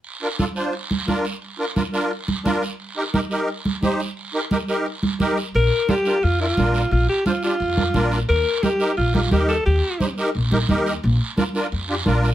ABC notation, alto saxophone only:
X:1
M:4/4
L:1/8
Q:1/4=175
K:Bb
V:1 name="Alto saxophone"
z8 | z8 | z8 | z8 |
B2 G2 F F3 | F G F F4 z | B2 G2 F F G A | G3 z4 z |
z8 |]